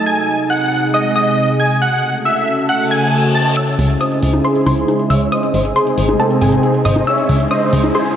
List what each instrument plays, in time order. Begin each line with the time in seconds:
Already playing: analog synth pad D#4
0.06 analog synth pad C3 G#3 G#4, supersaw synth G#5, synth pluck G#6
0.50 supersaw synth F#5, synth pluck F#6
0.94 supersaw synth D#5, synth pluck D#6
1.16 supersaw synth D#5, synth pluck D#6
1.60 supersaw synth G#5, synth pluck G#6
1.82 analog synth pad C#3 A3 F#4 A4, supersaw synth F#5, synth pluck F#6
2.25 supersaw synth E5, synth pluck E6
2.69 supersaw synth F#5, synth pluck F#6, reverse cymbal
2.91 supersaw synth G#5, synth pluck G#6
3.35 supersaw synth A5, synth pluck A6
3.57 analog synth pad C#3 G#3 E4 G#4, supersaw synth C#5 E5, synth pluck E6, closed hi-hat, riser
3.68 closed hi-hat
3.79 analog synth bass C#2, open hi-hat
3.90 closed hi-hat
4.01 supersaw synth C5 D#5, synth pluck D#6, closed hi-hat
4.12 closed hi-hat
4.23 analog synth bass C#2, open hi-hat
4.34 closed hi-hat, high conga
4.44 supersaw synth G#4 C5, synth pluck C6, closed hi-hat
4.55 closed hi-hat
4.66 analog synth bass C#2, supersaw synth G#4 C5, synth pluck C6, open hi-hat, high conga
4.77 closed hi-hat
4.88 closed hi-hat, high conga
4.99 closed hi-hat
5.10 analog synth bass C#2, supersaw synth C#5 E5, synth pluck E6, open hi-hat
5.21 closed hi-hat
5.32 analog synth pad C3 D#4 G#4, supersaw synth C5 D#5, synth pluck D#6, closed hi-hat
5.43 closed hi-hat
5.54 analog synth bass G#1, open hi-hat
5.65 closed hi-hat
5.76 supersaw synth G#4 C5, synth pluck C6, closed hi-hat
5.87 closed hi-hat
5.98 analog synth bass G#1, open hi-hat
6.09 closed hi-hat, high conga
6.20 supersaw synth C4 A4, synth pluck A5, closed hi-hat
6.31 closed hi-hat
6.41 analog synth bass G#1, supersaw synth C4 G#4, synth pluck G#5, open hi-hat
6.52 closed hi-hat
6.63 closed hi-hat
6.74 closed hi-hat
6.85 analog synth bass G#1, supersaw synth C5 D#5, synth pluck D#6, open hi-hat
6.96 closed hi-hat, high conga
7.07 analog synth pad C#3 E4 G#4, supersaw synth C#5 E5, synth pluck E6, closed hi-hat
7.18 closed hi-hat
7.29 analog synth bass C#2, open hi-hat
7.40 closed hi-hat
7.51 supersaw synth C5 D#5, synth pluck D#6, closed hi-hat
7.62 closed hi-hat
7.73 analog synth bass C#2, open hi-hat
7.84 high conga
7.95 supersaw synth G#4 C5, synth pluck C6, closed hi-hat
8.06 closed hi-hat